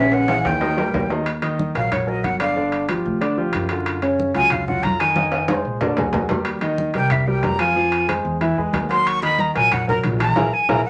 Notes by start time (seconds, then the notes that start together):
Already playing: A#1 C#3 C#4 C#5 E5
0.12 F#5, high conga, high timbale
0.28 E3 E4 G#4, high conga, high timbale
0.45 D#2 G5, high conga, high timbale
0.60 D#3 D#4 D#5, high conga, low timbale
0.77 G3 G4 A#4, high conga, low timbale
0.94 D#2, high conga, low timbale
1.10 D#3 D#4 D#5, low timbale
1.26 high conga, high timbale
1.42 D#3 D#4 D#5, high conga, high timbale
1.59 high conga
1.75 A#1 F#3 F#4 A#4 F5, high conga, high timbale
1.92 C#5, high conga, low conga, high timbale
2.07 F#3 F#4 A#4 D#5, high conga
2.24 G1 F#5, high conga, high timbale
2.39 D3 D4 D5 F5, high timbale
2.56 D3 D4 D5, high conga
2.72 high conga, high timbale
2.89 F3 F4 G4, high conga, high timbale
3.05 D2, high conga
3.21 D3 D4 D5, high conga, high timbale
3.37 F3 F4 G4, high conga
3.53 F#2, high conga, high timbale
3.69 D3 F4 F#4, high timbale
3.86 high conga, high timbale
4.02 C#3 C#4 C#5, high conga, high timbale
4.19 high conga
4.34 C#2 F#3 F4 F#4 G#5, high conga, high timbale
4.50 F5, high conga, low conga, high timbale
4.68 F#3 F4 F#4 F#5, high conga, low conga
4.83 F2 A#5, high conga, high timbale
5.00 D#3 D#4 D#5 G#5, high timbale
5.16 D#3 D#4 D#5, high conga, high timbale
5.32 high timbale
5.48 G#3 G#4 C5, high conga, high timbale
5.65 A#1
5.81 D3 D4 D5, low conga, low timbale
5.97 C#2 F#3 F#4 G#4, low conga, low timbale
6.13 D#2, low conga, low timbale
6.29 G3 G4 A#4, low conga, low timbale
6.45 high conga, high timbale
6.61 D#3 D#4 D#5, high conga, high timbale
6.78 high conga
6.94 C2 G3 G4 A#4 G5, high conga, high timbale
7.10 E5, high conga, low conga, high timbale
7.27 G3 G4 A#4 G5, high conga
7.43 F2 A#5, high conga, high timbale, low timbale
7.59 F3 F4 F5 G#5, high timbale
7.76 F3 F4 F5, high conga
7.92 high conga, high timbale
8.07 G#3 G#4 C5, high conga, high timbale
8.25 E2, high conga
8.41 E3 E4 E5, high conga, high timbale
8.57 E2 G#3 G#4 B4, high conga
8.73 D#2, high conga, high timbale, low timbale
8.89 F#3 F#4 A#4 C6, high timbale
9.07 C#6, high conga, high timbale
9.22 D#3 D#4 D#5 B5, high conga, high timbale
9.39 A#5, high conga
9.55 A#1 F#3 F#4 A#4 G#5, high timbale
9.72 F#5, high conga, low conga, high timbale
9.87 F#3 F#4 A#4, high conga, low conga
10.03 A#1, high conga, high timbale
10.20 E3 E4 E5 A#5, high timbale
10.36 A#1 E4 G#4 A#4, high conga, high timbale
10.53 G#5
10.69 A#1 E4 G#4 A#4 A#5, high conga, high timbale
10.85 F#5